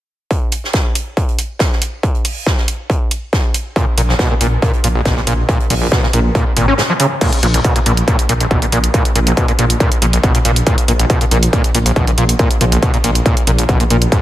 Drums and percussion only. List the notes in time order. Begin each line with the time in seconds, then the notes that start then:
0.31 kick, closed hi-hat
0.52 closed hi-hat, open hi-hat
0.64 snare
0.73 kick, snare, closed hi-hat
0.95 closed hi-hat, open hi-hat
1.17 kick, closed hi-hat
1.28 closed hi-hat
1.39 closed hi-hat, open hi-hat
1.59 kick, snare, closed hi-hat, open hi-hat
1.72 snare
1.81 closed hi-hat, open hi-hat
2.03 kick, closed hi-hat
2.15 closed hi-hat
2.24 open hi-hat
2.46 kick, snare, closed hi-hat
2.57 snare
2.68 closed hi-hat, open hi-hat
2.90 kick, closed hi-hat
3.11 closed hi-hat, open hi-hat
3.33 kick, snare, closed hi-hat
3.54 closed hi-hat, open hi-hat
3.76 kick, closed hi-hat
3.98 closed hi-hat, open hi-hat
4.09 snare
4.19 kick, snare, closed hi-hat
4.41 closed hi-hat, open hi-hat
4.62 kick, closed hi-hat
4.73 closed hi-hat
4.84 closed hi-hat, open hi-hat
5.05 kick, snare, closed hi-hat, open hi-hat
5.17 snare
5.27 closed hi-hat, open hi-hat
5.49 kick, closed hi-hat
5.60 closed hi-hat
5.70 open hi-hat
5.91 kick, snare, closed hi-hat
6.03 snare
6.13 closed hi-hat, open hi-hat
6.35 kick, closed hi-hat
6.56 closed hi-hat, open hi-hat
6.78 snare, closed hi-hat
7.00 closed hi-hat, open hi-hat
7.21 kick, closed hi-hat, crash
7.33 closed hi-hat
7.43 open hi-hat
7.54 closed hi-hat
7.64 kick, closed hi-hat
7.76 closed hi-hat
7.86 open hi-hat
7.97 closed hi-hat
8.08 kick, closed hi-hat
8.19 closed hi-hat
8.29 open hi-hat
8.40 closed hi-hat
8.51 kick, open hi-hat
8.62 closed hi-hat
8.72 open hi-hat
8.84 closed hi-hat
8.94 kick, closed hi-hat
9.05 closed hi-hat
9.16 open hi-hat
9.27 closed hi-hat
9.37 kick, closed hi-hat
9.48 open hi-hat
9.59 open hi-hat
9.70 closed hi-hat
9.80 kick, closed hi-hat
9.92 closed hi-hat
10.02 open hi-hat
10.13 closed hi-hat
10.23 kick, closed hi-hat
10.35 closed hi-hat
10.45 open hi-hat
10.56 closed hi-hat
10.67 kick, closed hi-hat
10.78 closed hi-hat
10.88 open hi-hat
10.99 closed hi-hat
11.10 kick, closed hi-hat
11.21 closed hi-hat
11.31 open hi-hat
11.43 closed hi-hat
11.53 kick, closed hi-hat
11.64 closed hi-hat
11.75 open hi-hat
11.86 closed hi-hat
11.96 kick, open hi-hat
12.07 closed hi-hat
12.18 open hi-hat
12.29 closed hi-hat
12.39 kick, closed hi-hat
12.51 closed hi-hat
12.61 open hi-hat
12.72 closed hi-hat
12.83 kick, closed hi-hat
12.94 open hi-hat
13.04 open hi-hat
13.15 closed hi-hat
13.26 kick, closed hi-hat
13.37 closed hi-hat
13.47 open hi-hat
13.59 closed hi-hat
13.69 kick, closed hi-hat
13.80 closed hi-hat
13.90 open hi-hat
14.02 closed hi-hat
14.12 kick, closed hi-hat